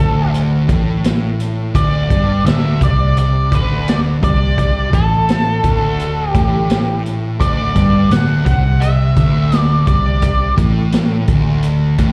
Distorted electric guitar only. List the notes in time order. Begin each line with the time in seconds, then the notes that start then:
0.00 D2
0.68 A2
1.75 D2
2.10 G2
2.45 D2
2.81 C3
3.52 D2
4.22 C3
4.92 A2
5.63 D2
6.34 A2
7.39 D2
7.75 G2
8.11 D2
8.46 C3
9.16 D2
9.87 C3
10.57 A2
11.28 D2
11.99 A2